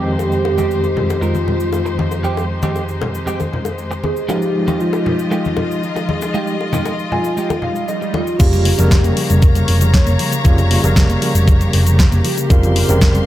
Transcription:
Already playing: F2 D#3 G#3 C4 D#4 G4 C5
0.19 G4, high bongo, cabasa
0.32 cabasa
0.45 high bongo
0.58 F2 G#3 C4 G4, high conga, cabasa
0.71 cabasa
0.84 high bongo, cabasa
0.96 muted clean electric guitar stroke, low conga
1.10 high bongo, cabasa
1.21 F2 G#3 C4 F4 A#4, cabasa
1.34 high conga, cabasa
1.47 muted clean electric guitar stroke, high bongo, low conga
1.60 cabasa
1.73 high bongo, cabasa
1.86 muted clean electric guitar stroke, cabasa
1.98 muted clean electric guitar stroke, high conga
2.11 high bongo, cabasa
2.23 F2 G#3 C4 G4, cabasa
2.37 high bongo, cabasa
2.62 F2 G#3 C4 G4, high conga, cabasa
2.76 high bongo, cabasa
2.88 cabasa
3.01 muted clean electric guitar stroke, high bongo, low conga
3.15 cabasa
3.26 F2 G#3 C4 G4, cabasa
3.40 high bongo, high conga, cabasa
3.52 muted clean electric guitar stroke, low conga
3.65 high bongo, cabasa
3.78 cabasa
3.91 muted clean electric guitar stroke, cabasa
4.03 G#4, muted clean electric guitar stroke, high bongo, high conga
4.16 cabasa
4.28 F3 G#3 D#4 F4 G4 D#5, high bongo, cabasa
4.42 cabasa
4.67 G#3 D#4 F4 G4, high bongo, high conga, cabasa
4.80 F4, cabasa
4.93 high bongo, cabasa
5.06 muted clean electric guitar stroke, low conga
5.19 cabasa
5.31 G#3 D#4 F4 G4, high bongo, cabasa
5.45 high conga, cabasa
5.57 muted clean electric guitar stroke, high bongo, low conga
5.71 cabasa
5.83 D#4, cabasa
5.96 muted clean electric guitar stroke, high bongo, cabasa
6.09 G#4, muted clean electric guitar stroke, high conga
6.21 high bongo, cabasa
6.34 G#3 D#4 F4 G4, cabasa
6.47 cabasa
6.61 high bongo
6.73 G#3 D#4 F4 G4, high conga, low conga, cabasa
6.85 high bongo, cabasa
6.99 cabasa
7.11 F4 G#5, muted clean electric guitar stroke, low conga
7.24 high bongo, cabasa
7.37 G#3 D#4 F4 G4 G5, swell, cabasa
7.50 high bongo, high conga, cabasa
7.62 F5, muted clean electric guitar stroke, low conga
7.76 cabasa
7.88 D#5, high bongo, cabasa
8.01 muted clean electric guitar stroke, cabasa
8.14 F4 D#5, muted clean electric guitar stroke, high bongo, high conga
8.27 cabasa
8.39 F1 C#3 F3 G3 A#3 F4 G4 C#5 F5 A#5, kick, closed hi-hat, crash, shaker
8.53 G3, closed hi-hat, shaker
8.65 A#3, open hi-hat
8.78 F1 C#3 F3 G3 A#3 A#4, closed hi-hat, shaker
8.91 kick, snare, closed hi-hat, shaker
9.04 A#3, closed hi-hat, shaker
9.17 F3, open hi-hat
9.30 F1 G3, closed hi-hat, shaker
9.42 F3 A#4, kick, closed hi-hat, shaker
9.55 G3, closed hi-hat, shaker
9.68 F1 A#3, open hi-hat
9.81 F3, closed hi-hat, shaker
9.93 G3 C#5, kick, snare, closed hi-hat, shaker
10.06 F1 A#3, closed hi-hat, shaker
10.19 F3, open hi-hat
10.32 G3, closed hi-hat, shaker
10.44 F1 C#3 F3 G3 A#3 F4, kick, closed hi-hat, shaker
10.58 G3, closed hi-hat, shaker
10.71 A#3, open hi-hat
10.83 F1 C#3 F3 G3 A#3 A#4, closed hi-hat, shaker
10.96 G3, kick, snare, closed hi-hat, shaker
11.09 A#3, closed hi-hat, shaker
11.22 F3, open hi-hat
11.35 F1 G3, closed hi-hat, shaker
11.48 F3, kick, closed hi-hat, shaker
11.61 G3, closed hi-hat, shaker
11.73 F1 A#3, open hi-hat
11.86 F3, closed hi-hat, shaker
11.99 G3, kick, snare, closed hi-hat, shaker
12.12 F1 A#3, closed hi-hat, shaker
12.24 F3 G4, open hi-hat
12.37 G3, closed hi-hat, shaker
12.49 F1 C#3 D#3 G3 C4 F4 A#4 F5 C6, kick, closed hi-hat, shaker
12.63 F3, closed hi-hat, shaker
12.76 G3, open hi-hat
12.88 F1 C#3 D#3 G3 C4 A#4, closed hi-hat, shaker
13.01 F3, kick, snare, closed hi-hat, shaker
13.14 G3, closed hi-hat, shaker

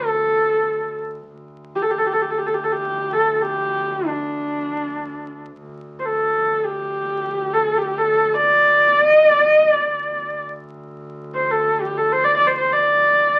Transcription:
Already playing: D2 A4
1.29 D2
1.76 G4
1.82 A4
1.91 G4
1.98 A4
2.06 G4
2.13 A4
2.22 G4
2.30 A4
2.38 G4
2.46 A4
2.54 G4
2.64 A4
2.72 G4
3.13 A4
3.35 A4
3.42 G4
4.06 D4
5.57 D2
5.99 C5
6.05 A4
6.65 G4
7.53 A4
7.78 G4
7.98 A4
8.34 D5
9.07 D#5
9.26 D5
9.48 D#5
9.67 D5
9.87 D2
11.34 C5
11.51 A4
11.80 G4
11.97 A4
12.12 C5
12.24 D5
12.36 D5
12.47 C5
12.57 C5
12.73 D5

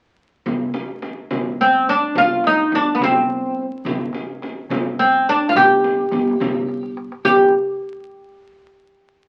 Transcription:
0.46 G1, frame drum, darbuka dum
0.74 darbuka tek, frame drum
1.02 darbuka tek, frame drum
1.31 G1, darbuka dum, frame drum
1.61 C4
1.89 D4
2.15 G1 F4, darbuka dum, frame drum
2.44 D#4, darbuka tek, frame drum
2.72 G1 D4, darbuka tek, frame drum
2.95 B3
3.00 G1 C4, darbuka dum, frame drum
3.85 G1, darbuka dum, frame drum
4.13 darbuka tek, frame drum
4.42 darbuka tek, frame drum
4.70 G1, darbuka dum, frame drum
4.99 C4
5.29 D4
5.49 F4
5.55 G1 G4, darbuka dum, frame drum
5.84 darbuka tek, frame drum
6.11 G1, darbuka tek, frame drum
6.40 G1, darbuka dum, frame drum
6.68 darbuka tek
6.83 darbuka ka
6.97 darbuka tek
7.12 darbuka ka
7.25 G1 G4, darbuka dum, frame drum

